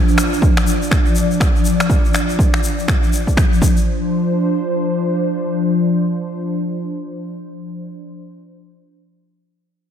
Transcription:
Already playing: analog synth pad F3 D4 D5
0.08 shaker
0.18 finger snap, shaker
0.33 shaker
0.42 kick, shaker
0.57 finger snap, shaker
0.67 shaker
0.82 shaker
0.91 finger snap, kick, shaker
1.06 shaker
1.15 shaker
1.31 shaker
1.40 finger snap, kick, shaker
1.56 shaker
1.65 shaker
1.80 finger snap, shaker
1.90 kick, shaker
2.05 shaker
2.14 finger snap, shaker
2.29 shaker
2.39 kick, shaker
2.54 finger snap, shaker
2.64 shaker
2.79 shaker
2.88 finger snap, kick, shaker
3.03 shaker
3.13 shaker
3.27 kick, shaker
3.37 finger snap, kick, shaker
3.53 shaker
3.62 analog synth pad F3 D4 C5, kick, shaker
3.77 shaker

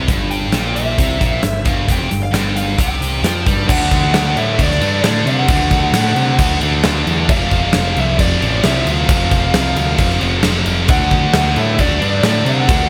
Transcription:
0.08 picked electric bass G1, distorted electric guitar G2, kick, closed hi-hat
0.31 lead electric guitar G5, closed hi-hat
0.52 picked electric bass A#1, distorted electric guitar A#2, snare, closed hi-hat
0.75 lead electric guitar E5, closed hi-hat
0.98 picked electric bass C2, distorted electric guitar C3, kick, closed hi-hat
1.21 picked electric bass A#1, distorted electric guitar A#2, kick, closed hi-hat
1.43 picked electric bass G1, distorted electric guitar G2, snare, closed hi-hat
1.65 picked electric bass G1, distorted electric guitar G2, lead electric guitar F5, kick, closed hi-hat
1.88 picked electric bass F1, distorted electric guitar F2, lead electric guitar G5, kick, closed hi-hat
2.11 picked electric bass G1, distorted electric guitar G2, closed hi-hat
2.23 lead electric guitar F5
2.32 picked electric bass G1, distorted electric guitar G2, lead electric guitar G5, snare, closed hi-hat
2.56 lead electric guitar F5, closed hi-hat
2.78 picked electric bass C2, distorted electric guitar C3, lead electric guitar G5, kick, closed hi-hat
3.02 closed hi-hat
3.23 picked electric bass F2, distorted electric guitar F3, snare, closed hi-hat
3.46 picked electric bass G2, distorted electric guitar G3, kick, closed hi-hat
3.67 picked electric bass D2, distorted electric guitar D3 A3 D4, lead electric guitar F#5, kick, crash
3.91 picked electric bass D2, kick, crash
4.13 picked electric bass D2, snare, crash
4.36 picked electric bass A2, lead electric guitar E5, crash
4.58 picked electric bass D2, lead electric guitar D5, kick, crash
4.71 snare
4.81 picked electric bass G2, distorted electric guitar D3 A3 D4, crash
5.03 picked electric bass A2, distorted electric guitar D3 A3 D4, lead electric guitar D5, snare, crash
5.26 picked electric bass C3, lead electric guitar F#5, crash
5.48 picked electric bass D2, distorted electric guitar D3 A3 D4, kick, crash
5.70 picked electric bass D2, kick, crash
5.93 picked electric bass A2, snare, crash
6.16 picked electric bass C3, crash
6.39 picked electric bass D2, kick, crash
6.61 picked electric bass D2, distorted electric guitar A3 D4, crash
6.65 distorted electric guitar D3
6.83 picked electric bass D2, distorted electric guitar D3 A3, snare, crash
6.88 distorted electric guitar D4
7.06 picked electric bass E2, crash
7.29 picked electric bass F1, distorted electric guitar F2 C3 F3, lead electric guitar F5, kick, crash
7.51 picked electric bass F1, kick, crash
7.73 picked electric bass F1, snare, crash
7.96 picked electric bass C2, lead electric guitar E5, crash
8.19 picked electric bass F1, lead electric guitar D5, kick, crash
8.42 picked electric bass A1, distorted electric guitar F2 C3 F3, crash
8.63 picked electric bass C2, distorted electric guitar F2 C3 F3, lead electric guitar E5, snare, crash
8.67 distorted electric guitar C3 F3
8.85 picked electric bass D2, lead electric guitar F5, crash
9.08 picked electric bass F1, distorted electric guitar F2 C3, kick, crash
9.13 distorted electric guitar F3
9.31 picked electric bass F1, kick, crash
9.54 picked electric bass C2, snare, crash
9.76 picked electric bass D2, crash
9.98 picked electric bass F1, kick, crash
10.10 snare
10.21 picked electric bass F1, distorted electric guitar F2 C3 F3, crash
10.43 picked electric bass F1, distorted electric guitar F2 C3 F3, snare, crash
10.66 picked electric bass F1, crash
10.88 picked electric bass D2, distorted electric guitar D3 A3 D4, lead electric guitar F#5, kick, crash
11.11 picked electric bass D2, kick, crash
11.33 picked electric bass D2, snare, crash
11.56 picked electric bass A2, lead electric guitar E5, crash
11.78 picked electric bass D2, lead electric guitar D5, kick, crash
12.00 picked electric bass G2, distorted electric guitar D3 A3 D4, crash
12.23 picked electric bass A2, distorted electric guitar D3 A3 D4, lead electric guitar D5, snare, crash
12.45 picked electric bass C3, lead electric guitar F#5, crash
12.68 picked electric bass D2, distorted electric guitar D3 A3 D4, kick, crash

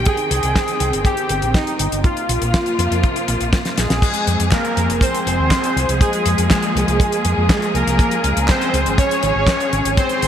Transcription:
Already playing: string section D#3 G5
0.05 string section C4, analog polysynth G#4, kick, closed hi-hat
0.17 closed hi-hat
0.31 fingered electric bass C2, closed hi-hat
0.43 fingered electric bass C2, closed hi-hat
0.56 kick, snare, closed hi-hat
0.68 closed hi-hat
0.80 fingered electric bass C2, closed hi-hat
0.93 fingered electric bass G1, closed hi-hat
1.05 analog polysynth G4, kick, closed hi-hat
1.17 closed hi-hat
1.29 fingered electric bass G1, closed hi-hat
1.42 fingered electric bass A#1, closed hi-hat
1.54 analog polysynth D#4, kick, snare, closed hi-hat
1.67 closed hi-hat
1.79 fingered electric bass G1, closed hi-hat
1.92 fingered electric bass G1, closed hi-hat
2.04 string section C3 F3 A#3 F4, analog polysynth F4, kick, closed hi-hat
2.17 closed hi-hat
2.29 fingered electric bass A#1, closed hi-hat
2.41 fingered electric bass A#1, closed hi-hat
2.54 kick, snare, closed hi-hat
2.66 closed hi-hat
2.79 fingered electric bass F2, closed hi-hat
2.91 fingered electric bass F2, closed hi-hat
3.03 kick, closed hi-hat
3.16 closed hi-hat
3.28 fingered electric bass A#1, closed hi-hat
3.40 fingered electric bass A#1, closed hi-hat
3.53 kick, snare, closed hi-hat
3.65 snare, closed hi-hat
3.78 fingered electric bass A#1, analog polysynth G#3 G#4, snare, closed hi-hat
3.90 fingered electric bass A#1, snare, closed hi-hat
4.02 string section F3 G#3 C4 G#4, kick, closed hi-hat, crash
4.14 closed hi-hat
4.27 fingered electric bass F2, closed hi-hat
4.40 fingered electric bass F2, closed hi-hat
4.52 analog polysynth A#3 A#4, kick, snare, clap, closed hi-hat
4.65 closed hi-hat
4.77 fingered electric bass F2, closed hi-hat
4.89 fingered electric bass F1, closed hi-hat
5.01 analog polysynth C4 C5, kick, closed hi-hat
5.15 closed hi-hat
5.26 fingered electric bass F1, closed hi-hat
5.39 fingered electric bass D#2
5.51 kick, snare, clap, closed hi-hat
5.64 closed hi-hat
5.76 fingered electric bass C2, closed hi-hat
5.89 fingered electric bass C2, closed hi-hat
6.01 analog polysynth G#3 G#4, string section A#3, kick, closed hi-hat
6.13 closed hi-hat
6.26 fingered electric bass F2, closed hi-hat
6.38 fingered electric bass F2, closed hi-hat
6.50 analog polysynth G#3 G#4, kick, snare, clap, closed hi-hat
6.62 closed hi-hat
6.75 fingered electric bass C2, closed hi-hat
6.88 fingered electric bass C2, closed hi-hat
7.00 kick, closed hi-hat
7.12 closed hi-hat
7.25 fingered electric bass F2, closed hi-hat
7.37 fingered electric bass F2
7.49 kick, snare, clap, closed hi-hat
7.62 closed hi-hat
7.74 fingered electric bass C2, analog polysynth A#3 A#4, closed hi-hat
7.87 fingered electric bass C2, closed hi-hat
7.99 string section C#3, kick, closed hi-hat
8.11 closed hi-hat
8.24 fingered electric bass C#2, closed hi-hat
8.36 fingered electric bass C#2, closed hi-hat
8.48 analog polysynth C4 C5, kick, snare, clap, closed hi-hat
8.61 closed hi-hat
8.74 fingered electric bass C#2, closed hi-hat
8.86 fingered electric bass G#1, closed hi-hat
8.98 analog polysynth C#4 C#5, kick, closed hi-hat
9.11 closed hi-hat
9.23 fingered electric bass G#1, closed hi-hat
9.35 fingered electric bass G#1
9.47 kick, snare, clap, closed hi-hat
9.60 closed hi-hat
9.73 fingered electric bass G#1, closed hi-hat
9.85 fingered electric bass G#1, closed hi-hat
9.97 string section D#3 G#3 C4, analog polysynth C4 C5, kick, closed hi-hat
10.09 closed hi-hat
10.22 fingered electric bass G#1, closed hi-hat

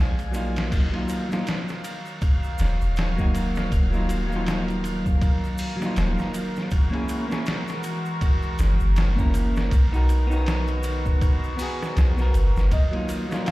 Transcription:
Already playing: 808-style bass A#1, clean electric guitar G#3 A#3 D4 F4, string section G#4 D5 F5 G#5
0.19 ride, shaker
0.31 clean electric guitar F#3 A#3 D#4, ride, shaker
0.36 clean electric guitar F4
0.56 snare, ride, shaker
0.72 string section D#3 F#3 A#4 F5, kick, crash, ride, shaker
0.91 clean electric guitar F#3 A#3 D#4, ride
0.96 clean electric guitar F4
1.09 ride, shaker
1.28 clean electric guitar F#3 A#3 D#4, shaker
1.33 clean electric guitar F4, snare
1.47 snare, ride, shaker
1.68 snare, shaker
1.84 ride, shaker
2.06 shaker
2.21 kick, ride, shaker
2.44 shaker
2.58 808-style bass D#1, snare, ride, shaker
2.81 808-style bass D#1, shaker
2.96 snare, ride, shaker
3.16 clean electric guitar F#3 A#3 D#4, kick, shaker
3.21 clean electric guitar F#4
3.34 ride, shaker
3.55 snare, shaker
3.72 808-style bass D#1, kick, ride, shaker
3.91 clean electric guitar F#3 A#3 D#4, shaker
3.96 clean electric guitar F4
4.09 ride, shaker
4.27 clean electric guitar F#3 A#3
4.32 clean electric guitar D#4, shaker
4.36 clean electric guitar F4
4.46 snare, ride, shaker
4.68 ride, shaker
4.84 ride, shaker
5.06 kick, shaker
5.21 kick, ride, shaker
5.44 shaker
5.58 open hi-hat, shaker
5.77 clean electric guitar F#3 A#3
5.82 clean electric guitar D#4, snare, shaker
5.86 clean electric guitar F4
5.96 808-style bass D#1, snare, ride, shaker
6.18 snare, shaker
6.34 ride, shaker
6.56 snare, shaker
6.71 string section E3 G#3 F#4, kick, ride, shaker
6.90 clean electric guitar A#3 C#4 E4, ride
6.95 clean electric guitar G#4
7.09 ride, shaker
7.28 clean electric guitar A#3 C#4 E4, shaker
7.32 clean electric guitar G#4, snare
7.46 snare, ride, shaker
7.68 snare, shaker
7.83 ride, shaker
8.05 shaker
8.21 kick, ride, shaker
8.42 shaker
8.59 808-style bass F#1, snare, ride, shaker
8.80 808-style bass F#1, shaker
8.96 snare, ride, shaker
9.15 clean electric guitar A#3 C#4 E4, kick, shaker
9.20 clean electric guitar A#4
9.34 ride, shaker
9.56 snare, shaker
9.71 808-style bass B1, string section D#3 B3 F#4, kick, ride, shaker
9.92 clean electric guitar B3 D#4 F#4, shaker
9.96 clean electric guitar A#4
10.09 ride, shaker
10.27 clean electric guitar B3 D#4
10.31 clean electric guitar F#4, shaker
10.36 clean electric guitar A#4
10.46 snare, ride, shaker
10.67 ride, shaker
10.83 ride, shaker
11.06 kick, shaker
11.21 kick, ride, shaker
11.44 shaker
11.57 clean electric guitar B3 F#4, open hi-hat, shaker
11.62 clean electric guitar G#4
11.82 snare, shaker
11.97 808-style bass B1, snare, ride, shaker
12.17 clean electric guitar B3 F#4, snare, shaker
12.22 clean electric guitar A#4
12.34 808-style bass F#1, ride, shaker
12.56 808-style bass F#1, snare, shaker
12.71 string section D#3 F#3 D#4, felt piano D#5, kick, ride, shaker
12.91 clean electric guitar F#3 A#3 D#4, ride
12.96 clean electric guitar F4
13.09 ride, shaker
13.29 clean electric guitar F#3 A#3 D#4, snare, shaker
13.33 clean electric guitar F4
13.46 felt piano F5, snare, ride, shaker

